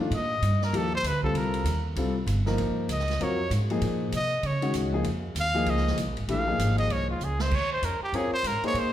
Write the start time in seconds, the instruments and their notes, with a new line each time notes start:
0.00 grand piano D#3 A3 D4 F4
0.11 upright bass A#2, ride
0.15 trumpet D#5
0.42 upright bass G2, hi-hat pedal, ride
0.62 trumpet A#4, snare
0.72 upright bass D#2, grand piano F3 A#3 D#4 G4, ride
0.76 trumpet A4
0.95 trumpet C5
1.03 upright bass D2, hi-hat pedal, ride
1.07 trumpet B4
1.23 grand piano G3 C4 F4 A4, trumpet A4, kick
1.34 upright bass C2, trumpet A#4, ride
1.54 ride
1.64 upright bass D#2, hi-hat pedal, ride
1.96 upright bass C2, grand piano G3 C4 F4 A4, ride
2.26 upright bass G1, hi-hat pedal, ride
2.46 grand piano F3 A#3 D#4 A#4, snare
2.57 upright bass A#1, ride
2.76 muted upright bass stroke
2.88 upright bass C#2, trumpet D#5, hi-hat pedal, ride
2.99 snare
3.08 snare, ride
3.19 upright bass F2, grand piano F#3 C4 F4 A#4, ride
3.23 trumpet C#5
3.50 upright bass G#2, hi-hat pedal, ride
3.70 grand piano F3 A#3 D#4 G#4, ride
3.81 upright bass A#2, ride
4.12 upright bass C3, trumpet D#5, hi-hat pedal, ride
4.43 upright bass C#3, trumpet C#5, ride
4.62 grand piano D#3 G#3 C#4 F#4, ride
4.74 upright bass C#2, hi-hat pedal, ride
4.93 grand piano F3 A#3 D#4 G#4
5.04 upright bass F2, ride
5.35 upright bass D#2, hi-hat pedal, ride
5.39 trumpet F5
5.55 grand piano F3 A#3 D#4 G#4
5.66 upright bass C#2, trumpet D#5, ride
5.77 snare
5.87 snare
5.97 upright bass C2, hi-hat pedal, ride
6.07 upright bass A#1
6.17 upright bass G#1, ride
6.28 upright bass A#1, grand piano E3 A3 D4 G4, trumpet F5, ride
6.47 grand piano F3 A#3 D#4 G#4
6.58 upright bass G#1, hi-hat pedal, ride
6.78 trumpet D#5, ride
6.89 upright bass C2, trumpet C#5, ride
7.10 trumpet F4
7.20 upright bass C#2, hi-hat pedal
7.24 trumpet G#4
7.39 trumpet C5, snare
7.51 upright bass D#2, kick, crash
7.55 trumpet C#5
7.73 trumpet C5
7.82 upright bass F2, trumpet A#4, hi-hat pedal, ride
8.00 trumpet G4, muted upright bass stroke
8.12 upright bass F#2, grand piano C4 F4 A#4 C#5, trumpet G#4, ride
8.32 trumpet C5, muted upright bass stroke
8.43 upright bass G#2, trumpet A#4, hi-hat pedal, ride
8.62 grand piano A#3 D#4 G#4 C5, trumpet C#5, muted upright bass stroke, ride
8.74 upright bass A#2, ride
8.79 trumpet C5
8.84 upright bass F#2